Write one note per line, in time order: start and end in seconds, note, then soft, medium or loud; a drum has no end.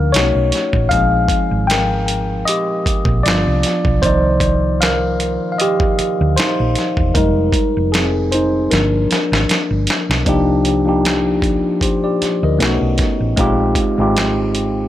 0.00 0.12 D2 medium
0.00 0.15 F3 medium
0.00 0.15 A#3 medium
0.00 0.15 D4 soft
0.00 0.15 D#4 medium
0.00 0.15 A#4 medium
0.00 0.15 F5 loud
0.00 0.15 G5 loud
0.12 0.32 B1 loud
0.12 0.88 A3 medium
0.12 0.88 C#4 medium
0.12 0.88 D#4 medium
0.12 0.88 F#4 medium
0.12 0.93 C#5 loud
0.12 snare loud
0.12 closed hi-hat medium
0.35 0.50 B1 medium
0.52 snare soft
0.52 closed hi-hat medium
0.73 0.89 A1 medium
0.73 kick medium
0.89 1.26 A#1 medium
0.89 3.21 F3 medium
0.89 3.21 G#3 soft
0.89 3.21 C4 medium
0.89 3.21 D#4 medium
0.89 1.66 G#4 medium
0.89 1.64 F5 loud
0.89 kick loud
0.89 closed hi-hat medium
1.29 kick medium
1.29 closed hi-hat medium
1.51 2.43 G#1 medium
1.67 2.44 A#4 medium
1.67 2.48 G5 loud
1.67 snare loud
1.67 closed hi-hat medium
2.08 closed hi-hat medium
2.45 3.22 G4 medium
2.45 3.20 D#5 loud
2.45 closed hi-hat medium
2.86 muted fingered electric bass stroke soft
2.86 kick medium
2.86 closed hi-hat medium
3.05 3.22 A#1 medium
3.05 kick medium
3.23 3.44 G1 medium
3.23 3.99 F3 medium
3.23 3.99 B3 soft
3.23 4.00 D4 medium
3.23 4.00 F4 medium
3.23 4.04 D5 loud
3.23 closed hi-hat medium
3.28 snare loud
3.47 3.62 C2 medium
3.63 snare soft
3.63 closed hi-hat medium
3.85 4.01 B1 medium
3.85 kick medium
4.02 5.37 C2 loud
4.02 7.11 D#3 medium
4.02 7.11 F3 medium
4.02 7.11 A#3 medium
4.02 4.78 D#4 medium
4.02 4.76 C5 loud
4.02 7.11 D5 medium
4.02 kick loud
4.02 closed hi-hat medium
4.40 kick medium
4.40 closed hi-hat medium
4.81 5.49 A#4 medium
4.81 5.51 F5 medium
4.81 snare loud
4.81 closed hi-hat medium
5.20 closed hi-hat medium
5.52 5.59 F5 medium
5.58 6.34 G4 medium
5.58 6.39 D#5 medium
5.58 closed hi-hat medium
5.80 kick medium
5.99 muted fingered electric bass stroke soft
5.99 closed hi-hat medium
6.21 6.36 D2 medium
6.37 7.12 D#4 medium
6.37 7.17 C5 medium
6.37 snare loud
6.37 closed hi-hat medium
6.60 6.75 A#1 medium
6.75 snare soft
6.75 closed hi-hat medium
6.97 7.13 E1 medium
6.97 kick medium
7.14 7.49 F1 loud
7.14 7.68 G3 medium
7.14 7.68 G#3 medium
7.14 7.90 D#4 medium
7.14 7.95 A#4 medium
7.14 kick loud
7.14 closed hi-hat medium
7.53 kick medium
7.53 closed hi-hat medium
7.77 8.67 F1 medium
7.92 8.30 C4 medium
7.92 8.32 G#4 medium
7.92 snare loud
7.92 closed hi-hat medium
8.32 8.69 D#4 medium
8.32 8.72 C5 medium
8.32 closed hi-hat medium
8.71 9.06 G1 loud
8.71 10.23 F3 medium
8.71 10.23 A#3 medium
8.71 9.85 D4 medium
8.71 9.83 A#4 medium
8.71 snare medium
8.71 closed hi-hat medium
9.11 muted fingered electric bass stroke soft
9.11 snare medium
9.11 closed hi-hat medium
9.32 9.47 G#1 medium
9.32 snare medium
9.49 snare medium
9.49 closed hi-hat medium
9.71 9.86 G1 medium
9.87 snare medium
9.87 closed hi-hat medium
10.09 10.25 B1 medium
10.09 snare medium
10.25 11.61 C2 medium
10.25 10.79 F3 medium
10.25 10.80 A#3 medium
10.25 10.80 D4 medium
10.25 10.81 D#4 medium
10.25 kick medium
10.25 closed hi-hat medium
10.29 10.81 G4 loud
10.65 closed hi-hat medium
10.85 12.24 F3 medium
10.85 12.25 A#3 medium
10.85 12.26 D4 medium
10.85 12.26 D#4 medium
10.89 11.82 G4 medium
11.05 snare loud
11.05 closed hi-hat medium
11.42 kick medium
11.42 closed hi-hat medium
11.81 12.02 G4 soft
11.81 12.02 C5 medium
11.81 kick medium
11.81 closed hi-hat medium
12.04 12.41 G4 medium
12.04 12.40 D5 medium
12.22 muted fingered electric bass stroke soft
12.22 snare soft
12.22 closed hi-hat medium
12.43 12.58 D2 medium
12.43 12.80 A#4 medium
12.43 12.80 D#5 medium
12.58 12.78 B1 medium
12.58 13.30 A3 medium
12.58 13.30 B3 medium
12.58 13.31 C#4 medium
12.58 13.31 D#4 medium
12.58 13.32 F#4 medium
12.58 closed hi-hat medium
12.62 snare loud
12.81 12.97 B1 medium
12.98 kick medium
12.98 snare soft
12.98 closed hi-hat medium
13.20 13.36 A1 medium
13.36 13.72 A#1 medium
13.36 13.91 G#3 loud
13.36 13.91 C4 medium
13.36 13.92 D#4 medium
13.36 13.92 F4 medium
13.36 kick medium
13.36 closed hi-hat medium
13.41 13.93 G4 loud
13.75 kick medium
13.75 closed hi-hat medium
13.97 14.88 G#1 medium
13.97 14.88 G#3 medium
13.97 14.88 C4 medium
13.97 14.88 D#4 medium
13.97 14.88 F4 medium
13.97 14.88 G4 medium
14.17 snare loud
14.17 closed hi-hat medium
14.55 closed hi-hat medium